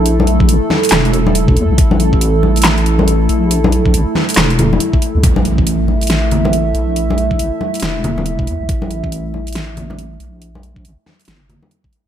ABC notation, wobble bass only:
X:1
M:4/4
L:1/16
Q:"Swing 16ths" 1/4=139
K:Cmix
V:1 name="Wobble bass" clef=bass
B,,,4 A,,, z3 E,,,6 E,, C,, | A,,,12- A,,,2 B,,,2- | B,,,4 A,,, z3 E,,,4 z3 D,, | A,,,12- A,,,2 B,,,2- |
B,,,4 A,,, z3 E,,,6 E,, C,, | A,,,12- A,,,2 B,,,2- | B,,,4 A,,, z3 G,,,3 z4 z |]